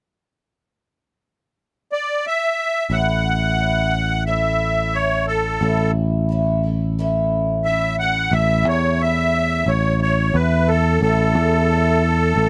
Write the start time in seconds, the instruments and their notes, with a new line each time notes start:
1.92 accordion D5
2.27 accordion E5
2.90 picked electric bass A1, twelve-string acoustic guitar A2 E3 A3 C#4 E4, accordion F#5
3.57 twelve-string acoustic guitar E3 A3 C#4
3.61 twelve-string acoustic guitar E4
3.91 twelve-string acoustic guitar C#4 E4
3.95 twelve-string acoustic guitar A3
4.26 twelve-string acoustic guitar A2 E3 A3 C#4 E4, accordion E5
4.93 twelve-string acoustic guitar E3 A3 C#4 E4, accordion C#5
5.26 twelve-string acoustic guitar E4, accordion A4
5.30 twelve-string acoustic guitar A3
5.60 picked electric bass A1, twelve-string acoustic guitar A2 E3 A3 C#4 E4
6.29 twelve-string acoustic guitar E3 A3 C#4 E4
6.63 twelve-string acoustic guitar A3 C#4 E4
6.99 twelve-string acoustic guitar A2 E3 A3 C#4 E4
7.64 twelve-string acoustic guitar E3 A3 C#4 E4, accordion E5
7.99 twelve-string acoustic guitar A3 C#4 E4, accordion F#5
8.31 picked electric bass A1, twelve-string acoustic guitar A2 E3 A3 C#4 E4, accordion E5
8.65 picked electric bass E2, accordion C#5
8.99 twelve-string acoustic guitar E3 A3 C#4 E4, accordion E5
9.34 twelve-string acoustic guitar A3 C#4 E4
9.66 picked electric bass A1, accordion C#5
10.00 twelve-string acoustic guitar A3 C#4 E4, accordion C#5
10.34 picked electric bass E2, twelve-string acoustic guitar E3 A3 C#4 E4, accordion B4
10.68 accordion A4
11.01 picked electric bass A1, twelve-string acoustic guitar A2 E3 A3 C#4 E4, accordion A4
11.35 picked electric bass E2
11.68 twelve-string acoustic guitar E3 A3 C#4 E4
12.02 twelve-string acoustic guitar A3 C#4 E4
12.36 picked electric bass A1